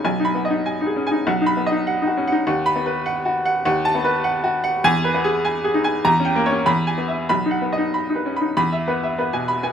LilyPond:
<<
  \new Staff \with { instrumentName = "Grand piano" } { \time 2/4 \key b \major \tempo 4 = 99 << { \tuplet 3/2 { r8 b''4 } r4 | \tuplet 3/2 { r8 b''4 } r4 | \tuplet 3/2 { r8 b''4 } r4 | \key e \major \tuplet 3/2 { r8 a''4 } r4 |
gis''8 r4. | bes''8 r8 b''8 r8 | b''8 r4. | b''8 r4. | } \\ { \tuplet 3/2 { gis''4 dis''8 gis''8 gis'8 gis''8 } | \tuplet 3/2 { fis''4 dis''8 fis''8 fis'8 fis''8 } | \tuplet 3/2 { fis''4 b'8 fis''8 fis'8 fis''8 } | \tuplet 3/2 { fis''4 b'8 fis''8 fis'8 fis''8 } |
\tuplet 3/2 { r8 b'8 gis'8 gis''8 gis'8 gis''8 } | \tuplet 3/2 { r8 g''8 cis''8 r8 gis''8 e''8 } | \tuplet 3/2 { r8 fis''8 dis''8 b''8 b'8 b''8 } | r16 e''16 b'16 e''16 b'16 gis''16 b''16 gis''16 | } >> }
  \new Staff \with { instrumentName = "Grand piano" } { \time 2/4 \key b \major b,,16 dis'16 b16 dis'8 dis'16 cis'16 dis'16 | b,,16 dis'16 b16 dis'8 dis'16 cis'16 dis'16 | dis,8 b8 r4 | \key e \major dis,8 b8 r4 |
e,8 b8 r8 dis'16 r16 | e,16 cis'16 bes16 cis'16 e,8 b8 | b,,16 dis'16 b16 dis'8 dis'16 cis'16 dis'16 | e,8 b8 b16 b,8 b16 | }
>>